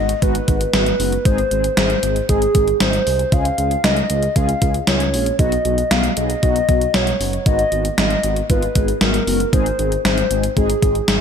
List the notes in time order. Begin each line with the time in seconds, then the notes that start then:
Already playing: G#1 G#3 B3 D#4 F#4 D#5
0.09 closed hi-hat
0.22 G#1 G#3 B3 D#4 F#4 B4, kick, closed hi-hat
0.35 closed hi-hat
0.48 G#1 G#3 B3 D#4 F#4, kick, closed hi-hat
0.61 closed hi-hat
0.73 G#1 G#3 B3 D#4 F#4 B4, snare, closed hi-hat
0.86 closed hi-hat
0.99 F#1 G#3 B3 D#4 F#4, open hi-hat
1.12 closed hi-hat
1.25 G#1 G#3 C4 D#4 G#4 C5, kick, closed hi-hat
1.38 closed hi-hat
1.51 G#1 G#3 C4 D#4 G#4, closed hi-hat
1.64 closed hi-hat
1.77 G#1 G#3 C4 D#4 G#4 C5, snare, closed hi-hat
1.90 closed hi-hat
2.03 G#1 G#3 C4 D#4 G#4, closed hi-hat
2.16 closed hi-hat
2.29 G#1 G#3 C4 D#4 G#4, kick, closed hi-hat
2.42 closed hi-hat
2.55 G#1 G#3 C4 D#4 G#4, kick, closed hi-hat
2.68 closed hi-hat
2.80 G#1 G#3 C4 D#4 G#4 C5, snare, closed hi-hat
2.93 closed hi-hat
3.07 C2 G#3 C4 D#4 G#4, open hi-hat
3.19 closed hi-hat
3.32 C#2 G#3 C#4 F4 G#4 F5, kick, closed hi-hat
3.45 closed hi-hat
3.58 C#2 G#3 C#4 F4 G#4, closed hi-hat
3.71 closed hi-hat
3.84 C#2 G#3 C#4 F4 G#4 D#5, snare, closed hi-hat
3.97 closed hi-hat
4.10 C#2 G#3 C#4 F4 G#4, closed hi-hat
4.23 closed hi-hat
4.36 C#2 G#3 C#4 F4 G#4 F5, kick, closed hi-hat
4.49 closed hi-hat
4.62 C#2 G#3 C#4 F4 G#4, kick, closed hi-hat
4.74 closed hi-hat
4.87 C#2 G#3 C#4 F4 G#4 C#5, snare, closed hi-hat
5.00 closed hi-hat
5.13 A#1 G#3 C#4 F4 G#4, open hi-hat
5.26 closed hi-hat
5.39 B1 F#3 B3 D#4 F#4 D#5, kick, closed hi-hat
5.52 closed hi-hat
5.65 B1 F#3 B3 D#4 F#4, closed hi-hat
5.78 closed hi-hat
5.91 B1 F#3 B3 D#4 F#4 F5, snare, closed hi-hat
6.04 closed hi-hat
6.17 B1 F#3 B3 D#4 G#4 D#5, closed hi-hat
6.30 closed hi-hat
6.43 B1 F#3 B3 D#4 F#4, kick, closed hi-hat
6.56 closed hi-hat
6.69 B1 F#3 B3 D#4 F#4, kick, closed hi-hat
6.81 closed hi-hat
6.94 B1 F#3 B3 D#4 F#4 C#5, snare, closed hi-hat
7.07 closed hi-hat
7.20 F#1 F#3 B3 D#4 F#4, open hi-hat
7.33 closed hi-hat
7.46 G#1 G#3 B3 D#4 F#4 D#5, kick, closed hi-hat
7.59 closed hi-hat
7.72 G#1 G#3 B3 D#4 F#4, closed hi-hat
7.85 closed hi-hat
7.98 G#1 G#3 B3 D#4 F4 D#5, snare, closed hi-hat
8.10 closed hi-hat
8.23 G#1 G#3 B3 D#4 F#4, closed hi-hat
8.36 closed hi-hat
8.50 G#1 G#3 B3 D#4 F4 B4, kick, closed hi-hat
8.62 closed hi-hat
8.75 G#1 G#3 B3 D#4 G#4, kick, closed hi-hat
8.88 closed hi-hat
9.01 G#1 G#3 B3 D#4 F#4 A#4, snare, closed hi-hat
9.14 closed hi-hat
9.27 F#1 G#3 B3 D#4 F#4, open hi-hat
9.40 closed hi-hat
9.53 G#1 G#3 C4 D#4 G#4 C5, kick, closed hi-hat
9.66 closed hi-hat
9.79 G#1 G#3 C4 D#4 G#4, closed hi-hat
9.92 closed hi-hat
10.05 G#1 G#3 C4 D#4 G#4 C5, snare, closed hi-hat
10.18 closed hi-hat
10.31 G#1 G#3 C4 D#4 G#4, closed hi-hat
10.43 closed hi-hat
10.56 G#1 G#3 C4 D#4 G#4, kick, closed hi-hat
10.70 closed hi-hat
10.82 G#1 G#3 C4 D#4 G#4, kick, closed hi-hat
10.95 closed hi-hat
11.08 G#1 G#3 C4 D#4 G#4, snare, closed hi-hat